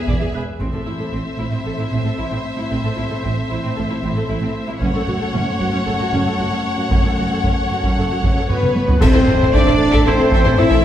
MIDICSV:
0, 0, Header, 1, 13, 480
1, 0, Start_track
1, 0, Tempo, 524934
1, 557, Time_signature, 4, 2, 24, 8
1, 9919, End_track
2, 0, Start_track
2, 0, Title_t, "Violin section"
2, 0, Program_c, 0, 48
2, 0, Note_on_c, 0, 76, 41
2, 353, Note_off_c, 0, 76, 0
2, 557, Note_on_c, 0, 76, 36
2, 4368, Note_off_c, 0, 76, 0
2, 4396, Note_on_c, 0, 78, 54
2, 7722, Note_off_c, 0, 78, 0
2, 7771, Note_on_c, 0, 71, 55
2, 8213, Note_off_c, 0, 71, 0
2, 8230, Note_on_c, 0, 72, 75
2, 8705, Note_off_c, 0, 72, 0
2, 8728, Note_on_c, 0, 74, 72
2, 9202, Note_off_c, 0, 74, 0
2, 9207, Note_on_c, 0, 72, 72
2, 9672, Note_off_c, 0, 72, 0
2, 9679, Note_on_c, 0, 76, 84
2, 9919, Note_off_c, 0, 76, 0
2, 9919, End_track
3, 0, Start_track
3, 0, Title_t, "Trumpet section"
3, 0, Program_c, 1, 61
3, 7760, Note_on_c, 1, 71, 61
3, 8207, Note_off_c, 1, 71, 0
3, 8241, Note_on_c, 1, 72, 76
3, 8719, Note_on_c, 1, 74, 79
3, 8720, Note_off_c, 1, 72, 0
3, 9192, Note_on_c, 1, 72, 78
3, 9198, Note_off_c, 1, 74, 0
3, 9664, Note_off_c, 1, 72, 0
3, 9675, Note_on_c, 1, 76, 82
3, 9919, Note_off_c, 1, 76, 0
3, 9919, End_track
4, 0, Start_track
4, 0, Title_t, "Violin section"
4, 0, Program_c, 2, 48
4, 0, Note_on_c, 2, 68, 46
4, 322, Note_off_c, 2, 68, 0
4, 569, Note_on_c, 2, 72, 32
4, 4374, Note_off_c, 2, 72, 0
4, 4402, Note_on_c, 2, 73, 52
4, 8022, Note_off_c, 2, 73, 0
4, 8242, Note_on_c, 2, 69, 68
4, 8242, Note_on_c, 2, 76, 74
4, 8290, Note_off_c, 2, 69, 0
4, 8290, Note_off_c, 2, 76, 0
4, 8344, Note_on_c, 2, 72, 45
4, 8349, Note_on_c, 2, 64, 42
4, 8395, Note_off_c, 2, 72, 0
4, 8400, Note_off_c, 2, 64, 0
4, 8475, Note_on_c, 2, 60, 47
4, 8478, Note_on_c, 2, 69, 43
4, 8524, Note_off_c, 2, 60, 0
4, 8527, Note_off_c, 2, 69, 0
4, 8605, Note_on_c, 2, 72, 52
4, 8610, Note_on_c, 2, 64, 57
4, 8652, Note_off_c, 2, 72, 0
4, 8656, Note_off_c, 2, 64, 0
4, 8725, Note_on_c, 2, 69, 61
4, 8727, Note_on_c, 2, 76, 71
4, 8772, Note_off_c, 2, 69, 0
4, 8773, Note_off_c, 2, 76, 0
4, 8838, Note_on_c, 2, 64, 50
4, 8839, Note_on_c, 2, 72, 46
4, 8886, Note_off_c, 2, 64, 0
4, 8887, Note_off_c, 2, 72, 0
4, 9067, Note_on_c, 2, 69, 69
4, 9068, Note_on_c, 2, 76, 63
4, 9117, Note_off_c, 2, 69, 0
4, 9118, Note_off_c, 2, 76, 0
4, 9193, Note_on_c, 2, 72, 49
4, 9201, Note_on_c, 2, 64, 61
4, 9242, Note_off_c, 2, 72, 0
4, 9249, Note_off_c, 2, 64, 0
4, 9306, Note_on_c, 2, 60, 50
4, 9312, Note_on_c, 2, 69, 53
4, 9357, Note_off_c, 2, 60, 0
4, 9361, Note_off_c, 2, 69, 0
4, 9445, Note_on_c, 2, 69, 67
4, 9450, Note_on_c, 2, 76, 68
4, 9491, Note_off_c, 2, 69, 0
4, 9495, Note_off_c, 2, 76, 0
4, 9546, Note_on_c, 2, 72, 57
4, 9549, Note_on_c, 2, 64, 58
4, 9596, Note_off_c, 2, 72, 0
4, 9598, Note_off_c, 2, 64, 0
4, 9670, Note_on_c, 2, 60, 57
4, 9674, Note_on_c, 2, 69, 58
4, 9719, Note_off_c, 2, 60, 0
4, 9722, Note_off_c, 2, 69, 0
4, 9780, Note_on_c, 2, 69, 66
4, 9782, Note_on_c, 2, 76, 66
4, 9831, Note_off_c, 2, 69, 0
4, 9833, Note_off_c, 2, 76, 0
4, 9919, End_track
5, 0, Start_track
5, 0, Title_t, "Viola section"
5, 0, Program_c, 3, 48
5, 73, Note_on_c, 3, 68, 44
5, 75, Note_on_c, 3, 74, 49
5, 122, Note_off_c, 3, 68, 0
5, 124, Note_off_c, 3, 74, 0
5, 185, Note_on_c, 3, 68, 37
5, 189, Note_off_c, 3, 68, 0
5, 189, Note_on_c, 3, 68, 40
5, 239, Note_off_c, 3, 68, 0
5, 316, Note_on_c, 3, 71, 36
5, 322, Note_on_c, 3, 68, 37
5, 365, Note_off_c, 3, 71, 0
5, 369, Note_off_c, 3, 68, 0
5, 546, Note_on_c, 3, 60, 46
5, 596, Note_off_c, 3, 60, 0
5, 668, Note_on_c, 3, 69, 29
5, 718, Note_off_c, 3, 69, 0
5, 783, Note_on_c, 3, 64, 25
5, 834, Note_off_c, 3, 64, 0
5, 902, Note_on_c, 3, 69, 28
5, 953, Note_off_c, 3, 69, 0
5, 1024, Note_on_c, 3, 60, 36
5, 1075, Note_off_c, 3, 60, 0
5, 1266, Note_on_c, 3, 64, 30
5, 1317, Note_off_c, 3, 64, 0
5, 1386, Note_on_c, 3, 60, 38
5, 1437, Note_off_c, 3, 60, 0
5, 1513, Note_on_c, 3, 69, 27
5, 1562, Note_off_c, 3, 69, 0
5, 1640, Note_on_c, 3, 64, 27
5, 1688, Note_off_c, 3, 64, 0
5, 1754, Note_on_c, 3, 60, 45
5, 1804, Note_off_c, 3, 60, 0
5, 1874, Note_on_c, 3, 69, 33
5, 1923, Note_off_c, 3, 69, 0
5, 1991, Note_on_c, 3, 64, 33
5, 2041, Note_off_c, 3, 64, 0
5, 2108, Note_on_c, 3, 60, 41
5, 2159, Note_off_c, 3, 60, 0
5, 2353, Note_on_c, 3, 64, 36
5, 2403, Note_off_c, 3, 64, 0
5, 2482, Note_on_c, 3, 60, 46
5, 2530, Note_off_c, 3, 60, 0
5, 2595, Note_on_c, 3, 69, 33
5, 2645, Note_off_c, 3, 69, 0
5, 2709, Note_on_c, 3, 64, 30
5, 2760, Note_off_c, 3, 64, 0
5, 2833, Note_on_c, 3, 69, 31
5, 2883, Note_off_c, 3, 69, 0
5, 2959, Note_on_c, 3, 60, 45
5, 3008, Note_off_c, 3, 60, 0
5, 3205, Note_on_c, 3, 64, 36
5, 3253, Note_off_c, 3, 64, 0
5, 3322, Note_on_c, 3, 60, 51
5, 3370, Note_off_c, 3, 60, 0
5, 3441, Note_on_c, 3, 69, 40
5, 3489, Note_off_c, 3, 69, 0
5, 3565, Note_on_c, 3, 64, 37
5, 3613, Note_off_c, 3, 64, 0
5, 3694, Note_on_c, 3, 60, 52
5, 3740, Note_off_c, 3, 60, 0
5, 3810, Note_on_c, 3, 69, 45
5, 3857, Note_off_c, 3, 69, 0
5, 3929, Note_on_c, 3, 64, 38
5, 3976, Note_off_c, 3, 64, 0
5, 4051, Note_on_c, 3, 60, 58
5, 4098, Note_off_c, 3, 60, 0
5, 4281, Note_on_c, 3, 64, 47
5, 4329, Note_off_c, 3, 64, 0
5, 4404, Note_on_c, 3, 61, 67
5, 4452, Note_off_c, 3, 61, 0
5, 4525, Note_on_c, 3, 69, 44
5, 4573, Note_off_c, 3, 69, 0
5, 4645, Note_on_c, 3, 66, 38
5, 4693, Note_off_c, 3, 66, 0
5, 4768, Note_on_c, 3, 69, 44
5, 4815, Note_off_c, 3, 69, 0
5, 4880, Note_on_c, 3, 61, 61
5, 4929, Note_off_c, 3, 61, 0
5, 5123, Note_on_c, 3, 66, 41
5, 5172, Note_off_c, 3, 66, 0
5, 5232, Note_on_c, 3, 61, 58
5, 5282, Note_off_c, 3, 61, 0
5, 5360, Note_on_c, 3, 69, 43
5, 5409, Note_off_c, 3, 69, 0
5, 5483, Note_on_c, 3, 66, 42
5, 5532, Note_off_c, 3, 66, 0
5, 5602, Note_on_c, 3, 61, 57
5, 5650, Note_off_c, 3, 61, 0
5, 5724, Note_on_c, 3, 69, 44
5, 5773, Note_off_c, 3, 69, 0
5, 5841, Note_on_c, 3, 66, 35
5, 5890, Note_off_c, 3, 66, 0
5, 5959, Note_on_c, 3, 61, 47
5, 6008, Note_off_c, 3, 61, 0
5, 6190, Note_on_c, 3, 66, 36
5, 6241, Note_off_c, 3, 66, 0
5, 6317, Note_on_c, 3, 61, 49
5, 6367, Note_off_c, 3, 61, 0
5, 6446, Note_on_c, 3, 69, 37
5, 6493, Note_off_c, 3, 69, 0
5, 6573, Note_on_c, 3, 66, 31
5, 6620, Note_off_c, 3, 66, 0
5, 6697, Note_on_c, 3, 69, 29
5, 6743, Note_off_c, 3, 69, 0
5, 6809, Note_on_c, 3, 61, 47
5, 6856, Note_off_c, 3, 61, 0
5, 7056, Note_on_c, 3, 66, 34
5, 7102, Note_off_c, 3, 66, 0
5, 7174, Note_on_c, 3, 61, 47
5, 7220, Note_off_c, 3, 61, 0
5, 7297, Note_on_c, 3, 69, 37
5, 7343, Note_off_c, 3, 69, 0
5, 7418, Note_on_c, 3, 66, 30
5, 7463, Note_off_c, 3, 66, 0
5, 7545, Note_on_c, 3, 61, 45
5, 7588, Note_off_c, 3, 61, 0
5, 7654, Note_on_c, 3, 69, 36
5, 7700, Note_off_c, 3, 69, 0
5, 7772, Note_on_c, 3, 66, 34
5, 7818, Note_off_c, 3, 66, 0
5, 7888, Note_on_c, 3, 61, 40
5, 7935, Note_off_c, 3, 61, 0
5, 8123, Note_on_c, 3, 66, 30
5, 8171, Note_off_c, 3, 66, 0
5, 8237, Note_on_c, 3, 69, 76
5, 8239, Note_off_c, 3, 69, 0
5, 8239, Note_on_c, 3, 69, 69
5, 8288, Note_off_c, 3, 69, 0
5, 8359, Note_on_c, 3, 69, 57
5, 8361, Note_off_c, 3, 69, 0
5, 8361, Note_on_c, 3, 69, 52
5, 8409, Note_off_c, 3, 69, 0
5, 8484, Note_on_c, 3, 69, 43
5, 8486, Note_off_c, 3, 69, 0
5, 8486, Note_on_c, 3, 69, 42
5, 8533, Note_off_c, 3, 69, 0
5, 8596, Note_on_c, 3, 69, 49
5, 8601, Note_off_c, 3, 69, 0
5, 8601, Note_on_c, 3, 69, 51
5, 8649, Note_off_c, 3, 69, 0
5, 8723, Note_on_c, 3, 69, 63
5, 8724, Note_off_c, 3, 69, 0
5, 8724, Note_on_c, 3, 69, 72
5, 8771, Note_off_c, 3, 69, 0
5, 8834, Note_on_c, 3, 69, 52
5, 8836, Note_off_c, 3, 69, 0
5, 8836, Note_on_c, 3, 69, 55
5, 8885, Note_off_c, 3, 69, 0
5, 9076, Note_on_c, 3, 69, 75
5, 9080, Note_off_c, 3, 69, 0
5, 9080, Note_on_c, 3, 69, 71
5, 9128, Note_off_c, 3, 69, 0
5, 9205, Note_on_c, 3, 69, 60
5, 9206, Note_off_c, 3, 69, 0
5, 9206, Note_on_c, 3, 69, 60
5, 9252, Note_off_c, 3, 69, 0
5, 9327, Note_on_c, 3, 69, 51
5, 9330, Note_off_c, 3, 69, 0
5, 9330, Note_on_c, 3, 69, 54
5, 9375, Note_off_c, 3, 69, 0
5, 9444, Note_on_c, 3, 69, 67
5, 9446, Note_off_c, 3, 69, 0
5, 9446, Note_on_c, 3, 69, 81
5, 9492, Note_off_c, 3, 69, 0
5, 9561, Note_on_c, 3, 69, 58
5, 9564, Note_off_c, 3, 69, 0
5, 9564, Note_on_c, 3, 69, 54
5, 9610, Note_off_c, 3, 69, 0
5, 9672, Note_on_c, 3, 69, 49
5, 9675, Note_off_c, 3, 69, 0
5, 9675, Note_on_c, 3, 69, 52
5, 9723, Note_off_c, 3, 69, 0
5, 9795, Note_on_c, 3, 69, 73
5, 9843, Note_off_c, 3, 69, 0
5, 9919, End_track
6, 0, Start_track
6, 0, Title_t, "French horn section"
6, 0, Program_c, 4, 60
6, 0, Note_on_c, 4, 59, 56
6, 303, Note_off_c, 4, 59, 0
6, 546, Note_on_c, 4, 60, 39
6, 548, Note_on_c, 4, 57, 38
6, 4362, Note_off_c, 4, 60, 0
6, 4363, Note_off_c, 4, 57, 0
6, 4411, Note_on_c, 4, 61, 55
6, 4412, Note_on_c, 4, 57, 59
6, 7615, Note_off_c, 4, 57, 0
6, 7615, Note_off_c, 4, 61, 0
6, 7771, Note_on_c, 4, 59, 66
6, 8213, Note_off_c, 4, 59, 0
6, 8253, Note_on_c, 4, 60, 90
6, 8717, Note_off_c, 4, 60, 0
6, 8737, Note_on_c, 4, 62, 92
6, 9198, Note_off_c, 4, 62, 0
6, 9208, Note_on_c, 4, 60, 86
6, 9677, Note_on_c, 4, 64, 90
6, 9681, Note_off_c, 4, 60, 0
6, 9919, Note_off_c, 4, 64, 0
6, 9919, End_track
7, 0, Start_track
7, 0, Title_t, "Trombone section"
7, 0, Program_c, 5, 61
7, 8237, Note_on_c, 5, 57, 59
7, 8247, Note_on_c, 5, 52, 58
7, 9919, Note_off_c, 5, 52, 0
7, 9919, Note_off_c, 5, 57, 0
7, 9919, End_track
8, 0, Start_track
8, 0, Title_t, "Cello section"
8, 0, Program_c, 6, 48
8, 60, Note_on_c, 6, 40, 49
8, 112, Note_off_c, 6, 40, 0
8, 179, Note_on_c, 6, 40, 38
8, 231, Note_off_c, 6, 40, 0
8, 305, Note_on_c, 6, 40, 36
8, 355, Note_off_c, 6, 40, 0
8, 550, Note_on_c, 6, 45, 44
8, 599, Note_off_c, 6, 45, 0
8, 671, Note_on_c, 6, 45, 27
8, 720, Note_off_c, 6, 45, 0
8, 791, Note_on_c, 6, 45, 29
8, 841, Note_off_c, 6, 45, 0
8, 911, Note_on_c, 6, 45, 33
8, 960, Note_off_c, 6, 45, 0
8, 1029, Note_on_c, 6, 45, 44
8, 1079, Note_off_c, 6, 45, 0
8, 1263, Note_on_c, 6, 45, 30
8, 1314, Note_off_c, 6, 45, 0
8, 1388, Note_on_c, 6, 45, 42
8, 1438, Note_off_c, 6, 45, 0
8, 1511, Note_on_c, 6, 45, 33
8, 1561, Note_off_c, 6, 45, 0
8, 1630, Note_on_c, 6, 45, 29
8, 1680, Note_off_c, 6, 45, 0
8, 1746, Note_on_c, 6, 45, 41
8, 1797, Note_off_c, 6, 45, 0
8, 1868, Note_on_c, 6, 45, 31
8, 1919, Note_off_c, 6, 45, 0
8, 1999, Note_on_c, 6, 45, 31
8, 2047, Note_off_c, 6, 45, 0
8, 2114, Note_on_c, 6, 45, 45
8, 2163, Note_off_c, 6, 45, 0
8, 2354, Note_on_c, 6, 45, 33
8, 2403, Note_off_c, 6, 45, 0
8, 2480, Note_on_c, 6, 45, 43
8, 2528, Note_off_c, 6, 45, 0
8, 2595, Note_on_c, 6, 45, 31
8, 2645, Note_off_c, 6, 45, 0
8, 2716, Note_on_c, 6, 45, 40
8, 2765, Note_off_c, 6, 45, 0
8, 2835, Note_on_c, 6, 45, 36
8, 2885, Note_off_c, 6, 45, 0
8, 2959, Note_on_c, 6, 45, 54
8, 3008, Note_off_c, 6, 45, 0
8, 3207, Note_on_c, 6, 45, 37
8, 3254, Note_off_c, 6, 45, 0
8, 3325, Note_on_c, 6, 45, 54
8, 3372, Note_off_c, 6, 45, 0
8, 3450, Note_on_c, 6, 45, 42
8, 3497, Note_off_c, 6, 45, 0
8, 3564, Note_on_c, 6, 45, 40
8, 3612, Note_off_c, 6, 45, 0
8, 3681, Note_on_c, 6, 45, 55
8, 3730, Note_off_c, 6, 45, 0
8, 3804, Note_on_c, 6, 45, 42
8, 3852, Note_off_c, 6, 45, 0
8, 3917, Note_on_c, 6, 45, 42
8, 3966, Note_off_c, 6, 45, 0
8, 4028, Note_on_c, 6, 45, 57
8, 4079, Note_off_c, 6, 45, 0
8, 4275, Note_on_c, 6, 45, 45
8, 4325, Note_off_c, 6, 45, 0
8, 4403, Note_on_c, 6, 42, 57
8, 4451, Note_off_c, 6, 42, 0
8, 4517, Note_on_c, 6, 42, 41
8, 4566, Note_off_c, 6, 42, 0
8, 4639, Note_on_c, 6, 42, 46
8, 4688, Note_off_c, 6, 42, 0
8, 4756, Note_on_c, 6, 42, 44
8, 4806, Note_off_c, 6, 42, 0
8, 4881, Note_on_c, 6, 42, 58
8, 4930, Note_off_c, 6, 42, 0
8, 5122, Note_on_c, 6, 42, 43
8, 5171, Note_off_c, 6, 42, 0
8, 5244, Note_on_c, 6, 42, 60
8, 5292, Note_off_c, 6, 42, 0
8, 5359, Note_on_c, 6, 42, 46
8, 5409, Note_off_c, 6, 42, 0
8, 5480, Note_on_c, 6, 42, 43
8, 5529, Note_off_c, 6, 42, 0
8, 5607, Note_on_c, 6, 42, 56
8, 5655, Note_off_c, 6, 42, 0
8, 5726, Note_on_c, 6, 42, 41
8, 5774, Note_off_c, 6, 42, 0
8, 5836, Note_on_c, 6, 42, 37
8, 5886, Note_off_c, 6, 42, 0
8, 5964, Note_on_c, 6, 42, 51
8, 6012, Note_off_c, 6, 42, 0
8, 6195, Note_on_c, 6, 42, 35
8, 6245, Note_off_c, 6, 42, 0
8, 6303, Note_on_c, 6, 42, 49
8, 6356, Note_off_c, 6, 42, 0
8, 6433, Note_on_c, 6, 42, 32
8, 6483, Note_off_c, 6, 42, 0
8, 6555, Note_on_c, 6, 42, 35
8, 6605, Note_off_c, 6, 42, 0
8, 6676, Note_on_c, 6, 42, 35
8, 6726, Note_off_c, 6, 42, 0
8, 6791, Note_on_c, 6, 42, 48
8, 6842, Note_off_c, 6, 42, 0
8, 7046, Note_on_c, 6, 42, 31
8, 7094, Note_off_c, 6, 42, 0
8, 7169, Note_on_c, 6, 42, 49
8, 7216, Note_off_c, 6, 42, 0
8, 7286, Note_on_c, 6, 42, 30
8, 7333, Note_off_c, 6, 42, 0
8, 7402, Note_on_c, 6, 42, 32
8, 7450, Note_off_c, 6, 42, 0
8, 7518, Note_on_c, 6, 42, 46
8, 7567, Note_off_c, 6, 42, 0
8, 7638, Note_on_c, 6, 42, 31
8, 7687, Note_off_c, 6, 42, 0
8, 7759, Note_on_c, 6, 59, 52
8, 7760, Note_on_c, 6, 42, 33
8, 7809, Note_off_c, 6, 42, 0
8, 7884, Note_on_c, 6, 42, 49
8, 7932, Note_off_c, 6, 42, 0
8, 8124, Note_on_c, 6, 42, 36
8, 8172, Note_off_c, 6, 42, 0
8, 8206, Note_off_c, 6, 59, 0
8, 8236, Note_on_c, 6, 60, 72
8, 8708, Note_off_c, 6, 60, 0
8, 8724, Note_on_c, 6, 62, 73
8, 9196, Note_on_c, 6, 60, 72
8, 9201, Note_off_c, 6, 62, 0
8, 9667, Note_on_c, 6, 64, 76
8, 9675, Note_off_c, 6, 60, 0
8, 9919, Note_off_c, 6, 64, 0
8, 9919, End_track
9, 0, Start_track
9, 0, Title_t, "Timpani"
9, 0, Program_c, 7, 47
9, 546, Note_on_c, 7, 45, 39
9, 1237, Note_off_c, 7, 45, 0
9, 9919, End_track
10, 0, Start_track
10, 0, Title_t, "Double bass section"
10, 0, Program_c, 8, 48
10, 79, Note_on_c, 8, 28, 51
10, 126, Note_off_c, 8, 28, 0
10, 320, Note_on_c, 8, 28, 34
10, 367, Note_off_c, 8, 28, 0
10, 563, Note_on_c, 8, 33, 40
10, 610, Note_off_c, 8, 33, 0
10, 806, Note_on_c, 8, 33, 29
10, 852, Note_off_c, 8, 33, 0
10, 1043, Note_on_c, 8, 33, 42
10, 1091, Note_off_c, 8, 33, 0
10, 1289, Note_on_c, 8, 33, 35
10, 1335, Note_off_c, 8, 33, 0
10, 1532, Note_on_c, 8, 33, 32
10, 1577, Note_off_c, 8, 33, 0
10, 1774, Note_on_c, 8, 33, 47
10, 1819, Note_off_c, 8, 33, 0
10, 2011, Note_on_c, 8, 33, 34
10, 2057, Note_off_c, 8, 33, 0
10, 2493, Note_on_c, 8, 33, 49
10, 2539, Note_off_c, 8, 33, 0
10, 2731, Note_on_c, 8, 33, 34
10, 2777, Note_off_c, 8, 33, 0
10, 2977, Note_on_c, 8, 33, 55
10, 3022, Note_off_c, 8, 33, 0
10, 3216, Note_on_c, 8, 33, 39
10, 3262, Note_off_c, 8, 33, 0
10, 3462, Note_on_c, 8, 33, 38
10, 3506, Note_off_c, 8, 33, 0
10, 3692, Note_on_c, 8, 33, 62
10, 3738, Note_off_c, 8, 33, 0
10, 3935, Note_on_c, 8, 33, 41
10, 3981, Note_off_c, 8, 33, 0
10, 4404, Note_on_c, 8, 30, 64
10, 4452, Note_off_c, 8, 30, 0
10, 4651, Note_on_c, 8, 30, 42
10, 4697, Note_off_c, 8, 30, 0
10, 4889, Note_on_c, 8, 30, 66
10, 4936, Note_off_c, 8, 30, 0
10, 5136, Note_on_c, 8, 30, 48
10, 5182, Note_off_c, 8, 30, 0
10, 5371, Note_on_c, 8, 30, 42
10, 5418, Note_off_c, 8, 30, 0
10, 5607, Note_on_c, 8, 30, 66
10, 5655, Note_off_c, 8, 30, 0
10, 5859, Note_on_c, 8, 30, 38
10, 5904, Note_off_c, 8, 30, 0
10, 6328, Note_on_c, 8, 30, 49
10, 6375, Note_off_c, 8, 30, 0
10, 6568, Note_on_c, 8, 30, 30
10, 6615, Note_off_c, 8, 30, 0
10, 6810, Note_on_c, 8, 30, 51
10, 6857, Note_off_c, 8, 30, 0
10, 7043, Note_on_c, 8, 30, 34
10, 7091, Note_off_c, 8, 30, 0
10, 7296, Note_on_c, 8, 30, 32
10, 7341, Note_off_c, 8, 30, 0
10, 7533, Note_on_c, 8, 30, 49
10, 7579, Note_off_c, 8, 30, 0
10, 7772, Note_on_c, 8, 30, 35
10, 7818, Note_off_c, 8, 30, 0
10, 8248, Note_on_c, 8, 33, 74
10, 8295, Note_off_c, 8, 33, 0
10, 8372, Note_on_c, 8, 33, 48
10, 8417, Note_off_c, 8, 33, 0
10, 8488, Note_on_c, 8, 33, 49
10, 8534, Note_off_c, 8, 33, 0
10, 8618, Note_on_c, 8, 33, 54
10, 8662, Note_off_c, 8, 33, 0
10, 8731, Note_on_c, 8, 33, 79
10, 8776, Note_off_c, 8, 33, 0
10, 8849, Note_on_c, 8, 33, 52
10, 8895, Note_off_c, 8, 33, 0
10, 9096, Note_on_c, 8, 33, 69
10, 9140, Note_off_c, 8, 33, 0
10, 9221, Note_on_c, 8, 33, 52
10, 9265, Note_off_c, 8, 33, 0
10, 9337, Note_on_c, 8, 33, 51
10, 9381, Note_off_c, 8, 33, 0
10, 9457, Note_on_c, 8, 33, 79
10, 9501, Note_off_c, 8, 33, 0
10, 9576, Note_on_c, 8, 33, 54
10, 9620, Note_off_c, 8, 33, 0
10, 9700, Note_on_c, 8, 33, 58
10, 9743, Note_off_c, 8, 33, 0
10, 9815, Note_on_c, 8, 33, 74
10, 9859, Note_off_c, 8, 33, 0
10, 9919, End_track
11, 0, Start_track
11, 0, Title_t, "Sub drop"
11, 0, Program_c, 10, 103
11, 8246, Note_on_c, 10, 60, 71
11, 9919, Note_off_c, 10, 60, 0
11, 9919, End_track
12, 0, Start_track
12, 0, Title_t, "Taiko and cinematic ensemble drums"
12, 70, Note_on_c, 9, 41, 56
12, 161, Note_off_c, 9, 41, 0
12, 551, Note_on_c, 9, 41, 39
12, 642, Note_off_c, 9, 41, 0
12, 4400, Note_on_c, 9, 41, 51
12, 4492, Note_off_c, 9, 41, 0
12, 6318, Note_on_c, 9, 41, 74
12, 6410, Note_off_c, 9, 41, 0
12, 6803, Note_on_c, 9, 41, 64
12, 6895, Note_off_c, 9, 41, 0
12, 7163, Note_on_c, 9, 41, 63
12, 7255, Note_off_c, 9, 41, 0
12, 7531, Note_on_c, 9, 41, 70
12, 7623, Note_off_c, 9, 41, 0
12, 7768, Note_on_c, 9, 45, 63
12, 7860, Note_off_c, 9, 45, 0
12, 7890, Note_on_c, 9, 47, 66
12, 7981, Note_off_c, 9, 47, 0
12, 8006, Note_on_c, 9, 48, 72
12, 8098, Note_off_c, 9, 48, 0
12, 8124, Note_on_c, 9, 43, 69
12, 8216, Note_off_c, 9, 43, 0
12, 8239, Note_on_c, 9, 41, 100
12, 8331, Note_off_c, 9, 41, 0
12, 8484, Note_on_c, 9, 45, 60
12, 8575, Note_off_c, 9, 45, 0
12, 8726, Note_on_c, 9, 41, 81
12, 8817, Note_off_c, 9, 41, 0
12, 9084, Note_on_c, 9, 41, 80
12, 9175, Note_off_c, 9, 41, 0
12, 9432, Note_on_c, 9, 41, 87
12, 9524, Note_off_c, 9, 41, 0
12, 9555, Note_on_c, 9, 45, 53
12, 9646, Note_off_c, 9, 45, 0
12, 9677, Note_on_c, 9, 45, 52
12, 9768, Note_off_c, 9, 45, 0
12, 9789, Note_on_c, 9, 41, 82
12, 9881, Note_off_c, 9, 41, 0
12, 9919, End_track
13, 0, Start_track
13, 0, Title_t, "Drums"
13, 8246, Note_on_c, 9, 35, 72
13, 8246, Note_on_c, 9, 49, 67
13, 8338, Note_off_c, 9, 35, 0
13, 8338, Note_off_c, 9, 49, 0
13, 9919, End_track
0, 0, End_of_file